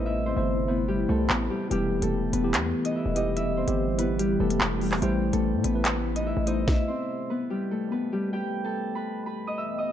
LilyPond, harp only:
\new Staff \with { instrumentName = "Harp" } { \time 4/4 \key e \minor \tempo 4 = 145 <e' e''>8 <c' c''>8 r8 <b b'>8 <g g'>8 <a a'>8 <b b'>8 <g g'>8 | <g g'>8. <a a'>16 r8 <b b'>8. <b b'>8 <dis' dis''>16 <e' e''>8 <dis' dis''>8 | <e' e''>8 <c' c''>8 r8 <b b'>8 <g g'>8 <a a'>8 b8 <g g'>8 | <g g'>8. <a a'>16 r8 <b b'>8. <b b'>8 <dis' dis''>16 <e' e''>8 <dis' dis''>8 |
<e' e''>8 <c' c''>8 r8 <b b'>8 <g g'>8 <a a'>8 <b b'>8 <g g'>8 | <g' g''>8. <a' a''>16 r8 <b' b''>8. <b' b''>8 <dis'' dis'''>16 <e'' e'''>8 <dis'' dis'''>8 | }